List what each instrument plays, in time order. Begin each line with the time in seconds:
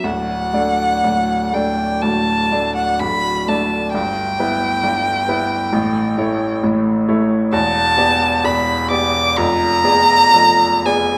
0.04 grand piano D1 D2, violin F#5
0.53 grand piano A3 D4 D5
1.04 grand piano D1 D2
1.53 grand piano A3 D4 D5, violin G5
2.02 grand piano D1 D2, violin A5
2.52 grand piano A3 D4 D5
2.76 violin F#5
3.00 grand piano D1 D2, violin B5
3.48 grand piano A3 D4 D5, violin A5
3.94 grand piano G1 G2, violin G5
4.39 grand piano B3 E4 B4
4.83 grand piano G1 G2
5.28 grand piano B3 E4 B4
5.72 grand piano A1 A2
6.18 grand piano A3 E4 C#5
6.63 grand piano A1 A2
7.08 grand piano A3 E4 C#5
7.53 grand piano E1 E2, violin A5
7.98 grand piano B3 G4 D5
8.44 grand piano E1 E2, violin B5
8.90 grand piano B3 G4 D5, violin D6
9.36 grand piano F1 F2, violin A#5
9.84 grand piano B3 G#4 D5
10.34 grand piano F1 F2
10.85 grand piano B3 G#4 D5, violin G#5